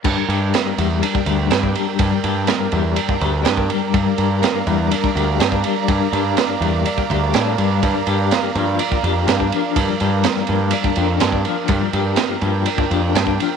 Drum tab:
CC |x---------------|----------------|----------------|----------------|
RD |--x-x-x-x-x-x-x-|x-x-x-x-x-x-x-x-|x-x-x-x-x-x-x-x-|x-x-x-x-x-x-x-x-|
SD |----o-------o---|----o-------o---|----o-------o---|----o-------o---|
BD |o--------o---o--|o--------o---o--|o--------o---o--|o--------oo-----|

CC |----------------|----------------|----------------|
RD |x-x-x-x-x-x-x-x-|x-x-x-x-x-x-x-x-|x-x-x-x-x-x-x-x-|
SD |----o-------o---|----oo------o---|----o-------o---|
BD |o--------o---o--|o--------o---o--|o--------o---o--|